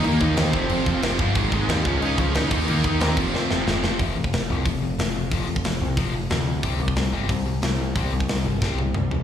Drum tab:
CC |x-x-x-x-x-x-x-x-|x-x-x-x-x-x-x-x-|x-x-x-x---------|----------------|
HH |----------------|----------------|----------------|o---o---o---o---|
SD |----o-------o---|----o-------o---|----o---o-o-o-o-|----o-------o---|
T1 |----------------|----------------|----------------|----------------|
T2 |----------------|----------------|----------------|----------------|
FT |----------------|----------------|----------------|----------------|
BD |--o---o---o---o-|o-o---o---o---o-|--o---o---------|o--o----o-------|

CC |----------------|----------------|----------------|
HH |o---o---o---o---|o---o---o---o---|o---o-----------|
SD |----o-------o---|----o-------o---|----o---o-------|
T1 |----------------|----------------|----------o-----|
T2 |----------------|----------------|------------o---|
FT |----------------|----------------|--------------o-|
BD |o--o----o-------|o--o----o-------|o--o----o-------|